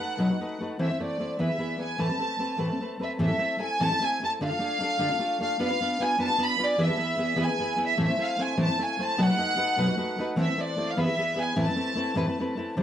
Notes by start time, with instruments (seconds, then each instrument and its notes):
Already playing: violin section F#5
0.00 nylon-string guitar A3 D#4 F#4 B4
0.18 nylon-string guitar B2 F#3 A3 D#4 F#4 B4
0.30 nylon-string guitar A3 D#4 F#4 B4
0.41 nylon-string guitar A3 D#4 F#4 B4
0.60 nylon-string guitar A3 D#4 F#4 B4
0.79 nylon-string guitar E3 A3 C4 E4 C5, violin section E5
0.90 nylon-string guitar C4 E4 C5
1.00 nylon-string guitar A3 C4 E4 C5
1.04 violin section D5
1.19 nylon-string guitar A3 C4 E4 C5
1.39 nylon-string guitar E3 B3 E4 G#4 B4, violin section E5
1.49 nylon-string guitar E4 G#4 B4
1.58 nylon-string guitar B3 E4 G#4 B4
1.78 nylon-string guitar B3 E4 G#4 B4, violin section G#5
1.98 nylon-string guitar A2 E3 A3 C4 A4 B4, violin section A5
2.09 nylon-string guitar A3 C4 B4
2.19 nylon-string guitar A3 C4 A4 B4
2.39 nylon-string guitar A3 C4 A4 B4
2.57 nylon-string guitar A2 E3 A3 C4 A4 B4
2.71 nylon-string guitar A3 C4 A4 B4
2.81 nylon-string guitar A3 C4 A4 B4
2.99 nylon-string guitar A3 C4 A4 B4, violin section E5
3.19 nylon-string guitar A2 E3 A3 C4 E4 A4, violin section E5
3.28 nylon-string guitar A3 C4 E4 A4
3.38 nylon-string guitar A3 C4 E4 A4
3.59 nylon-string guitar A3 C4 E4 A4, violin section G#5
3.80 nylon-string guitar A2 E3 A3 C4 E4 A4, violin section A5
3.91 nylon-string guitar A3 C4 E4 A4
4.00 nylon-string guitar A3 C4 E4 A4, violin section G#5
4.21 nylon-string guitar A3 C4 E4 A4, violin section A5
4.41 nylon-string guitar D3 A3 D4 F4 A4, violin section F5
4.50 nylon-string guitar D4 F4 A4
4.59 nylon-string guitar A3 D4 F4 A4
4.80 nylon-string guitar A3 D4 F4 A4
4.99 nylon-string guitar D3 A3 D4 F4 A4
5.09 nylon-string guitar D4 F4 A4
5.19 nylon-string guitar A3 D4 F4 A4
5.40 nylon-string guitar A3 D4 F4 A4, violin section F5
5.60 nylon-string guitar B3 D4 F4 B4, violin section F5
5.71 nylon-string guitar D4 F4 B4
5.81 nylon-string guitar B3 D4 F4 B4
6.00 nylon-string guitar B3 D4 F4 B4, violin section G#5
6.18 nylon-string guitar B3 D4 F4 B4
6.23 violin section A5
6.28 nylon-string guitar D4 F4 B4
6.38 nylon-string guitar B3 D4 F4 B4
6.43 violin section B5
6.58 nylon-string guitar B3 D4 F4 B4
6.64 violin section D5
6.78 nylon-string guitar E3 B3 E4 G#4 B4
6.83 violin section E5
6.88 nylon-string guitar E4 G#4 B4
6.97 nylon-string guitar B3 E4 G#4 B4
7.17 nylon-string guitar B3 E4 G#4 B4
7.36 nylon-string guitar E3 B3 E4 G#4 B4
7.43 violin section G#5
7.49 nylon-string guitar E4 G#4 B4
7.59 nylon-string guitar B3 E4 G#4 B4
7.76 nylon-string guitar B3 E4 G#4 B4
7.86 violin section E5
7.97 nylon-string guitar A2 E3 A3 C4 E4 C5
8.03 violin section E5
8.08 nylon-string guitar A3 C4 E4 C5
8.18 nylon-string guitar A3 C4 E4 C5
8.23 violin section F5
8.38 nylon-string guitar A3 C4 E4 C5, violin section G#5
8.57 nylon-string guitar A2 E3 A3 C4 E4 C5
8.63 violin section A5
8.67 nylon-string guitar A3 C4 E4 C5
8.79 nylon-string guitar A3 C4 E4 C5
8.84 violin section G#5
8.99 nylon-string guitar A3 C4 E4 C5
9.03 violin section A5
9.18 nylon-string guitar B2 F#3 A3 D#4 F#4 B4, violin section F#5
9.28 nylon-string guitar A3 D#4 F#4 B4
9.37 nylon-string guitar A3 D#4 F#4 B4
9.56 nylon-string guitar A3 D#4 F#4 B4
9.77 nylon-string guitar B2 F#3 A3 D#4 F#4 B4
9.87 nylon-string guitar A3 D#4 F#4 B4
9.97 nylon-string guitar A3 D#4 F#4 B4
10.18 nylon-string guitar A3 D#4 F#4 B4
10.36 nylon-string guitar E3 A3 C4 E4 C5
10.41 violin section E5
10.46 nylon-string guitar C4 E4 C5
10.57 nylon-string guitar A3 C4 E4 C5
10.61 violin section D5
10.76 nylon-string guitar A3 C4 E4 C5
10.90 violin section F5
10.97 nylon-string guitar E3 B3 E4 G#4 B4, violin section E5
11.06 nylon-string guitar E4 G#4 B4
11.17 nylon-string guitar B3 E4 G#4 B4
11.36 nylon-string guitar B3 E4 G#4 B4
11.40 violin section G#5
11.56 nylon-string guitar A2 E3 A3 C4 E4 B4
11.61 violin section A5
11.68 nylon-string guitar A3 C4 E4 B4
11.76 nylon-string guitar A3 C4 E4 B4
11.95 nylon-string guitar A3 C4 E4 B4
12.15 nylon-string guitar A2 E3 A3 C4 E4 B4
12.28 nylon-string guitar A3 C4 E4 B4
12.40 nylon-string guitar A3 C4 E4 B4
12.57 nylon-string guitar A3 C4 E4 B4
12.77 nylon-string guitar C3 E3 G3 C4 E4 C5